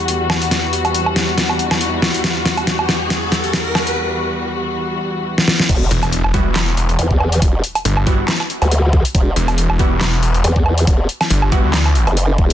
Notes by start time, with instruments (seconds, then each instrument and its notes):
Already playing: string section E2 E3 G3 F#4, riser
0.08 closed hi-hat
0.30 snare, low woodblock
0.42 closed hi-hat
0.51 snare, closed hi-hat
0.73 closed hi-hat
0.85 closed hi-hat, low woodblock
0.94 closed hi-hat
1.06 low woodblock
1.16 snare, closed hi-hat
1.38 snare, closed hi-hat
1.49 low woodblock
1.59 closed hi-hat
1.71 snare, closed hi-hat, low woodblock
1.81 closed hi-hat
2.02 snare
2.14 closed hi-hat
2.24 snare, closed hi-hat
2.46 snare, closed hi-hat
2.57 closed hi-hat, low woodblock
2.67 snare, closed hi-hat
2.79 low woodblock
2.89 snare, closed hi-hat
3.10 snare, closed hi-hat
3.32 snare, closed hi-hat
3.44 closed hi-hat
3.53 snare, closed hi-hat
3.75 snare, low woodblock
3.87 closed hi-hat
5.38 snare
5.48 snare
5.60 snare
5.69 wobble bass E1, kick, closed hi-hat, crash, impact
5.91 detuned saw bass E1, closed hi-hat
6.03 closed hi-hat, low woodblock
6.12 closed hi-hat
6.24 detuned saw bass E1, low woodblock
6.34 synth stab G3 B3 E4 F#4, kick, closed hi-hat
6.46 detuned saw bass E1
6.56 snare, clap, closed hi-hat
6.77 detuned saw bass E1, closed hi-hat
6.89 closed hi-hat
6.99 wobble bass E2, closed hi-hat
7.11 kick
7.20 low woodblock
7.32 closed hi-hat
7.42 wobble bass E1, kick, closed hi-hat
7.64 closed hi-hat
7.75 closed hi-hat, low woodblock
7.85 detuned saw bass G1, closed hi-hat
7.97 low woodblock
8.07 synth stab G3 B3 E4 F#4, kick, closed hi-hat
8.28 snare, clap, closed hi-hat
8.40 low woodblock
8.50 closed hi-hat
8.62 wobble bass D2, closed hi-hat, low woodblock
8.71 closed hi-hat
8.93 kick
9.05 closed hi-hat
9.15 wobble bass E1, kick, closed hi-hat
9.36 detuned saw bass E1, closed hi-hat
9.48 closed hi-hat, low woodblock
9.58 closed hi-hat
9.70 detuned saw bass E1, low woodblock
9.79 synth stab G3 B3 E4 F#4, kick, closed hi-hat
9.91 detuned saw bass E1
10.01 snare, clap, closed hi-hat
10.23 detuned saw bass E1, closed hi-hat
10.34 closed hi-hat
10.44 wobble bass E2, closed hi-hat
10.56 kick
10.66 low woodblock
10.78 closed hi-hat
10.87 wobble bass E1, kick, closed hi-hat
11.09 closed hi-hat
11.21 snare, closed hi-hat, low woodblock
11.30 detuned saw bass G1, closed hi-hat
11.42 low woodblock
11.52 synth stab G3 B3 E4 F#4, kick, closed hi-hat
11.64 detuned saw bass D2
11.74 snare, clap, closed hi-hat
11.85 low woodblock
11.95 closed hi-hat
12.07 wobble bass F#1, closed hi-hat, low woodblock
12.17 closed hi-hat
12.38 wobble bass E1, kick